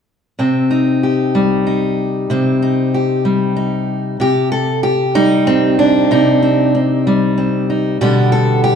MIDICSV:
0, 0, Header, 1, 2, 480
1, 0, Start_track
1, 0, Tempo, 634249
1, 292, Time_signature, 6, 3, 24, 8
1, 6624, End_track
2, 0, Start_track
2, 0, Title_t, "Steel-string acoustic guitar"
2, 0, Program_c, 0, 25
2, 293, Note_on_c, 0, 48, 62
2, 298, Note_on_c, 0, 60, 51
2, 534, Note_on_c, 0, 63, 48
2, 782, Note_on_c, 0, 67, 49
2, 1020, Note_on_c, 0, 55, 58
2, 1257, Note_off_c, 0, 63, 0
2, 1260, Note_on_c, 0, 63, 50
2, 1736, Note_off_c, 0, 48, 0
2, 1739, Note_on_c, 0, 48, 65
2, 1744, Note_off_c, 0, 60, 0
2, 1747, Note_on_c, 0, 60, 58
2, 1983, Note_off_c, 0, 63, 0
2, 1986, Note_on_c, 0, 63, 50
2, 2224, Note_off_c, 0, 67, 0
2, 2227, Note_on_c, 0, 67, 50
2, 2456, Note_off_c, 0, 55, 0
2, 2459, Note_on_c, 0, 55, 56
2, 2689, Note_off_c, 0, 63, 0
2, 2698, Note_on_c, 0, 63, 49
2, 3149, Note_off_c, 0, 63, 0
2, 3150, Note_off_c, 0, 48, 0
2, 3150, Note_off_c, 0, 55, 0
2, 3154, Note_off_c, 0, 60, 0
2, 3154, Note_off_c, 0, 67, 0
2, 3177, Note_on_c, 0, 48, 68
2, 3188, Note_on_c, 0, 67, 91
2, 3415, Note_off_c, 0, 67, 0
2, 3418, Note_on_c, 0, 69, 85
2, 3654, Note_off_c, 0, 69, 0
2, 3657, Note_on_c, 0, 67, 80
2, 3897, Note_on_c, 0, 55, 62
2, 3899, Note_on_c, 0, 63, 92
2, 4139, Note_on_c, 0, 60, 79
2, 4377, Note_off_c, 0, 67, 0
2, 4381, Note_on_c, 0, 62, 79
2, 4588, Note_off_c, 0, 48, 0
2, 4617, Note_off_c, 0, 63, 0
2, 4623, Note_on_c, 0, 48, 71
2, 4628, Note_on_c, 0, 63, 77
2, 4854, Note_off_c, 0, 60, 0
2, 4863, Note_on_c, 0, 60, 42
2, 5097, Note_off_c, 0, 60, 0
2, 5098, Note_off_c, 0, 62, 0
2, 5106, Note_on_c, 0, 60, 45
2, 5346, Note_off_c, 0, 55, 0
2, 5349, Note_on_c, 0, 55, 65
2, 5573, Note_off_c, 0, 60, 0
2, 5582, Note_on_c, 0, 60, 40
2, 5816, Note_off_c, 0, 63, 0
2, 5825, Note_on_c, 0, 63, 46
2, 6030, Note_off_c, 0, 48, 0
2, 6030, Note_off_c, 0, 60, 0
2, 6031, Note_off_c, 0, 63, 0
2, 6062, Note_on_c, 0, 47, 72
2, 6064, Note_on_c, 0, 67, 95
2, 6067, Note_off_c, 0, 55, 0
2, 6070, Note_on_c, 0, 50, 51
2, 6074, Note_on_c, 0, 55, 48
2, 6083, Note_on_c, 0, 59, 51
2, 6294, Note_off_c, 0, 67, 0
2, 6297, Note_on_c, 0, 69, 89
2, 6534, Note_off_c, 0, 69, 0
2, 6537, Note_on_c, 0, 67, 88
2, 6624, Note_off_c, 0, 47, 0
2, 6624, Note_off_c, 0, 50, 0
2, 6624, Note_off_c, 0, 55, 0
2, 6624, Note_off_c, 0, 59, 0
2, 6624, Note_off_c, 0, 67, 0
2, 6624, End_track
0, 0, End_of_file